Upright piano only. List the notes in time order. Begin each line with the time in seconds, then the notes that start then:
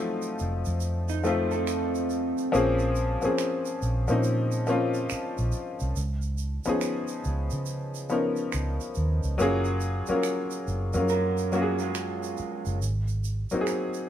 Already playing: F3 F#3 A3 C4 D#4 F4
1.23 F3 A3 C4 D#4 F4
2.52 F3 A#3 C4 C#4 G#4
3.22 F3 A#3 C4 C#4 G#4
4.08 F3 A#3 C4 C#4 D#4
4.67 F3 A#3 C4 C#4 F4
6.65 F3 B3 C#4 D#4 G#4
8.09 F3 B3 C#4 D#4 A#4
9.38 F#3 A#3 C#4 F4 G#4
10.08 F#3 A#3 C#4 F4 A#4
10.94 F#3 A#3 C#4 F4 A#4
11.52 F#3 A#3 C#4 F4 F#4
11.62 G#4
13.51 F#3 A#3 C4 D#4 F#4
13.61 G#4